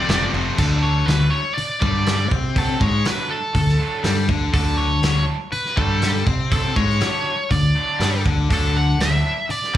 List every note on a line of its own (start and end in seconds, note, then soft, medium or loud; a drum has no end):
0.00 0.30 D5 medium
0.07 0.25 F1 medium
0.07 0.31 F2 medium
0.07 0.32 C3 medium
0.07 0.33 F3 medium
0.07 0.33 A3 medium
0.07 0.33 C4 loud
0.07 snare loud
0.07 crash medium
0.33 0.49 F1 medium
0.33 0.56 F2 medium
0.33 0.57 C3 medium
0.33 0.57 F3 medium
0.33 0.57 A3 medium
0.33 0.57 C4 medium
0.33 crash medium
0.57 1.04 D2 medium
0.57 0.90 D3 medium
0.57 0.90 F#3 medium
0.57 0.90 A3 medium
0.57 0.91 D4 medium
0.57 0.66 A4 medium
0.57 kick medium
0.57 crash loud
0.83 1.08 C#5 medium
1.06 1.30 D2 medium
1.06 1.39 D3 medium
1.06 1.40 F#3 medium
1.06 1.40 A3 medium
1.06 1.40 D4 medium
1.06 1.32 B4 medium
1.06 snare loud
1.06 open hi-hat soft
1.30 1.54 C#5 medium
1.54 1.79 D5 medium
1.54 muted fingered electric bass stroke soft
1.54 muted overdriven electric guitar stroke medium
1.54 open hi-hat soft
1.81 2.28 G2 medium
1.81 2.14 D3 medium
1.81 2.14 F#3 medium
1.81 2.30 G3 medium
1.81 2.14 A3 medium
1.81 2.14 D4 medium
1.81 2.27 D5 medium
1.81 kick loud
2.06 snare medium
2.06 open hi-hat soft
2.30 2.77 C3 medium
2.30 2.79 C4 medium
2.30 kick loud
2.55 2.87 D3 medium
2.55 2.88 F#3 loud
2.55 2.88 A3 medium
2.55 2.88 D4 medium
2.55 2.82 A4 medium
2.55 kick medium
2.55 open hi-hat soft
2.81 3.04 G#2 medium
2.81 3.05 G#3 loud
2.81 3.07 C#5 medium
2.81 kick medium
3.04 3.37 D3 medium
3.04 3.37 F#3 medium
3.04 3.37 A3 medium
3.04 3.37 D4 loud
3.04 3.30 B4 medium
3.04 snare loud
3.04 open hi-hat medium
3.30 4.25 A4 medium
3.55 3.78 D2 medium
3.55 3.75 D3 medium
3.55 kick medium
3.55 open hi-hat soft
3.68 snare soft
3.79 4.12 D3 medium
3.79 4.12 F#3 medium
3.79 4.11 A3 medium
3.79 4.11 D4 medium
4.04 4.27 G2 medium
4.04 4.28 G3 medium
4.04 snare medium
4.04 open hi-hat medium
4.28 4.52 D2 medium
4.28 4.53 D3 loud
4.28 kick medium
4.52 4.99 D2 medium
4.52 4.85 D3 medium
4.52 4.85 F#3 medium
4.52 4.85 A3 medium
4.52 4.86 D4 medium
4.52 4.79 A4 medium
4.52 kick loud
4.52 open hi-hat medium
4.77 5.24 C#5 medium
5.02 5.26 D2 medium
5.02 5.35 D3 medium
5.02 5.35 F#3 medium
5.02 5.35 A3 medium
5.02 5.35 D4 medium
5.02 snare loud
5.02 open hi-hat medium
5.52 5.77 B4 loud
5.52 muted fingered electric bass stroke soft
5.52 muted overdriven electric guitar stroke medium
5.52 open hi-hat soft
5.65 snare soft
5.77 6.23 G2 medium
5.77 6.10 D3 medium
5.77 6.10 F#3 medium
5.77 6.26 G3 loud
5.77 6.09 A3 medium
5.77 6.09 D4 medium
5.77 6.23 A4 medium
5.77 kick loud
6.02 snare medium
6.02 open hi-hat soft
6.26 6.73 C3 medium
6.26 6.75 C4 loud
6.26 kick loud
6.51 6.83 D3 medium
6.51 6.84 F#3 medium
6.51 6.84 A3 medium
6.51 6.84 D4 medium
6.51 6.75 A4 medium
6.51 kick loud
6.51 open hi-hat soft
6.76 7.00 G#2 medium
6.76 7.01 G#3 loud
6.76 7.51 C#5 medium
6.76 kick loud
6.90 snare soft
7.00 7.33 D3 medium
7.00 7.33 F#3 medium
7.00 7.33 A3 medium
7.00 7.33 D4 medium
7.00 snare loud
7.00 open hi-hat soft
7.51 7.74 D2 medium
7.51 7.71 D3 medium
7.51 8.22 D5 medium
7.51 kick medium
7.51 open hi-hat soft
7.75 8.08 D3 medium
7.75 8.08 F#3 medium
7.75 8.08 A3 medium
7.75 8.08 D4 medium
7.99 8.23 G2 medium
7.99 8.24 G3 medium
7.99 snare medium
7.99 open hi-hat soft
8.25 8.48 D2 medium
8.25 8.49 D3 loud
8.25 kick medium
8.50 8.97 D2 medium
8.50 8.82 D3 medium
8.50 8.82 F#3 medium
8.50 8.83 A3 medium
8.50 8.83 D4 medium
8.50 8.77 A4 medium
8.50 kick loud
8.50 open hi-hat medium
8.77 9.01 F#5 medium
8.99 9.22 D2 medium
8.99 9.32 D3 medium
8.99 9.32 F#3 medium
8.99 9.32 A3 medium
8.99 9.32 D4 loud
8.99 9.51 E5 medium
8.99 snare loud
8.99 open hi-hat medium
9.49 9.77 D5 medium
9.49 muted fingered electric bass stroke soft
9.49 muted overdriven electric guitar stroke medium
9.49 open hi-hat soft
9.64 snare soft